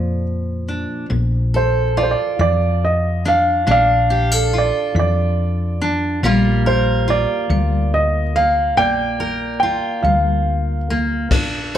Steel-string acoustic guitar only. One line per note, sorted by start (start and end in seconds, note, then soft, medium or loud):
0.00 1.05 A#2 medium
0.00 2.38 F3 soft
0.68 1.05 D4 soft
1.10 1.87 A#2 medium
1.54 3.62 A4 medium
1.97 4.13 F4 medium
2.39 3.16 F3 medium
3.25 3.67 D4 medium
3.67 4.44 A#2 medium
3.67 5.81 D4 medium
4.10 4.32 G4 medium
4.32 6.23 A4 medium
4.53 6.25 F4 medium
4.96 5.72 F3 medium
5.82 6.24 D4 medium
6.23 6.99 A#2 medium
6.23 7.50 G3 medium
6.23 8.35 A#3 medium
6.23 7.07 F4 medium
6.23 6.66 A#4 medium
6.66 9.20 A#4 medium
7.08 9.62 F4 medium
7.50 8.26 G3 medium
8.36 8.78 A#3 medium
8.77 9.53 A#2 medium
8.77 10.90 A#3 medium
9.20 11.74 A#4 medium
9.63 11.78 F4 medium
10.04 10.80 G3 medium
10.90 11.31 A#3 medium
11.31 11.78 A#2 medium
11.31 11.78 D4 medium